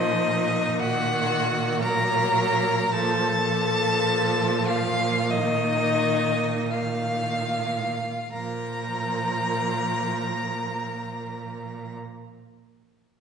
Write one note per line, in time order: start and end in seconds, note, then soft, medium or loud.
0.00 2.87 A#2 loud
0.00 0.81 F3 loud
0.00 0.81 D#4 loud
0.00 0.81 D#5 loud
0.79 1.82 D#3 loud
0.79 1.81 F#4 loud
0.79 1.81 F#5 loud
1.81 2.90 F#3 loud
1.81 2.93 A#4 loud
1.81 2.93 A#5 loud
2.91 7.94 A#2 loud
2.91 3.47 F3 loud
2.91 4.70 A4 loud
2.91 4.68 A5 loud
3.48 5.33 F3 loud
4.67 5.33 F4 loud
4.67 5.31 F5 loud
5.30 6.71 D#3 loud
5.30 6.73 D#4 loud
5.30 6.72 D#5 loud
6.70 7.96 D#3 medium
6.70 8.31 F4 medium
6.70 8.32 F5 loud
8.32 11.93 A#2 loud
8.32 11.93 F3 loud
8.32 11.92 A#4 loud
8.32 11.93 A#5 loud